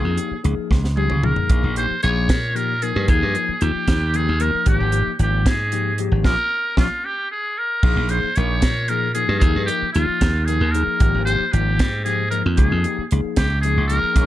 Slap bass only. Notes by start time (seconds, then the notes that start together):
0.05 F2
0.31 muted slap bass stroke
0.45 C#2
0.71 C#2
1.11 C#2
1.37 muted slap bass stroke
1.50 A#1
1.63 A#1
2.04 A#1
2.29 A#2
2.96 G2
3.09 D#2
3.23 G2
3.49 muted slap bass stroke
3.62 D#2
3.75 muted slap bass stroke
3.88 D#2
4.29 D#2
4.55 muted slap bass stroke
4.67 G#1
4.80 G#1
5.07 muted slap bass stroke
5.19 G#1
5.46 G#2
6.12 G#1
6.25 A#1
6.77 A#1
7.83 A#1
7.96 A#1
8.37 A#1
8.63 A#2
9.29 G2
9.42 D#2
9.56 G2
9.82 muted slap bass stroke
9.95 D#2
10.09 muted slap bass stroke
10.21 D#2
10.61 D#2
10.87 muted slap bass stroke
11.01 G#1
11.14 G#1
11.53 G#1
11.79 G#2
12.46 F2
12.58 C#2
12.72 F2
12.98 muted slap bass stroke
13.12 C#2
13.37 C#2
13.77 C#2
14.03 muted slap bass stroke
14.16 A#1